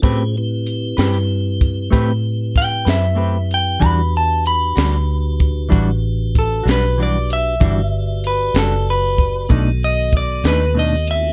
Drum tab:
HH |x-xx-xx-xx-x|x-xx-xx-xx-x|x-xx-xx-xx-x|
SD |---o----oo--|---o-----o--|---o-----o--|
BD |o----oo-o---|o----oo-o---|o----oo-o---|